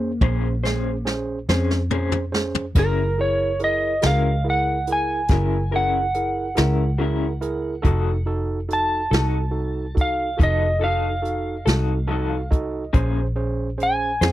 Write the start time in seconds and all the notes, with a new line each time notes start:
Already playing: F2 A#3 C#4 G#4 C5
0.21 A#1 A#3 C#4 G#4 C5, kick, high tom
0.63 C#4 G#4 C5, snare
1.05 C#4 G#4 C5, snare
1.49 F2 C#4 G#4 C5, snare
1.53 C#4
1.71 snare
1.91 A#3 C#4 G#4 C5, mid tom
1.95 C5
2.12 floor tom
2.32 C#4 G#4 C5, snare
2.55 floor tom
2.75 F#1 F#3 C#4 E4 G#4 A#4, kick, closed hi-hat, splash
2.79 A#4
3.18 E4 G#4 A#4 C#5
3.59 E4 G#4 A#4, closed hi-hat
3.64 D#5
4.02 C#2 E4 F#4 G#4 A#4, snare, closed hi-hat
4.06 C#4 F5
4.44 E4 G#4 A#4
4.50 F#5
4.87 E4 G#4 A#4, closed hi-hat
4.92 G#5
5.28 F#1 F#3 C#4 E4 G#4 A#4, kick, snare, closed hi-hat
5.71 E4 G#4 A#4
5.76 C#4 F#5
6.14 E4 G#4 A#4, closed hi-hat
6.55 C#2 E4 G#4 A#4, snare, closed hi-hat
6.60 C#4
6.98 F#3 C#4 E4 G#4 A#4
7.41 E4 G#4 A#4, closed hi-hat
7.82 F1 F3 D#4 F#4 A4, kick, closed hi-hat
7.86 A4
8.26 D#4 F#4 A4
8.69 D#4 F#4 A4, closed hi-hat
8.73 A5
9.11 C2 D#4 F#4 A4, snare, closed hi-hat
9.51 D#4 F#4 A4
9.95 D#4 F#4 A4, kick, closed hi-hat
10.01 F5
10.37 F1 F3 D#4 F#4 A4, kick, closed hi-hat
10.42 A4 D#5
10.79 D#4 F#4 A4
10.84 D#4 F5
11.22 D#4 F#4 A4, closed hi-hat
11.65 C2 D#4 F#4 A4, snare, closed hi-hat
12.07 F3 D#4 F#4 A4 A5
12.12 A4
12.29 F5
12.51 D#4 F#4 A4 D#5, kick, closed hi-hat
12.93 A#1 A#3 C#4 G#4 C5, kick, closed hi-hat
13.36 C#4 G#4 C5
13.78 C#4 G#4 C5, closed hi-hat
13.83 G#5
14.21 F2 C#4 G#4 C5, snare, closed hi-hat